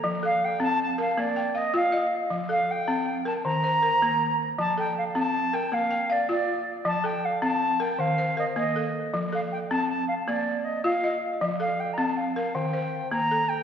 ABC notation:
X:1
M:12/8
L:1/16
Q:3/8=106
K:Fmix
V:1 name="Flute"
z2 f2 g2 a2 a2 f2 d4 e2 f4- f/2 z3/2 | z2 f2 g6 a2 b8- b2 z2 | a2 g2 f2 a4 g2 f4 d2 d4- d/2 z3/2 | a2 g2 f2 a4 g2 f4 e2 e4- e/2 z3/2 |
z2 f2 g2 a2 a2 f2 d4 e2 f4- f/2 z3/2 | z2 f2 g3/2 b/2 a2 f2 f2 g6 b4 g2 |]
V:2 name="Balafon"
A2 A6 z2 B4 g2 f4 e4- | e2 A6 z2 B4 c2 B6 z2 | z2 A6 z2 B4 g2 f6 z2 | z2 A6 z2 B4 c2 B4 A4- |
A2 A6 z12 e4- | e2 A6 z2 B4 c6 A4 |]
V:3 name="Balafon"
F,4 z2 C4 z2 B,4 z2 F4 z2 | F,4 z2 C4 z2 E,4 z2 B,4 z2 | F,4 z2 C4 z2 B,4 z2 F4 z2 | F,4 z2 C4 z2 E,4 z2 B,4 z2 |
F,4 z2 C4 z2 B,4 z2 F4 z2 | F,4 z2 C4 z2 E,4 z2 B,4 z2 |]